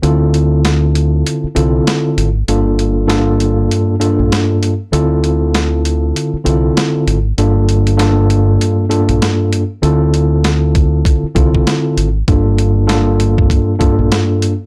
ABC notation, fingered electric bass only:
X:1
M:4/4
L:1/16
Q:"Swing 16ths" 1/4=98
K:Dm
V:1 name="Fingered electric bass" clef=bass
D,,8 z2 C,,2 z2 ^G,,,2 | G,,,8 z3 B,,, z4 | D,,8 z2 C,,2 z2 ^G,,,2 | G,,,8 z3 B,,, z4 |
D,,8 z2 C,,2 z2 ^G,,,2 | G,,,8 z3 B,,, z4 |]